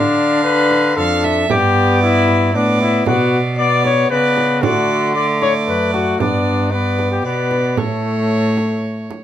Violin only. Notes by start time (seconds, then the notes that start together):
Already playing: F5
0.98 F5
1.24 E5
1.51 D5
2.54 D5
3.07 D5
3.58 D5
4.11 D5
4.64 D5
5.15 D5
6.20 D5
6.72 D5
7.25 D5
7.78 C#5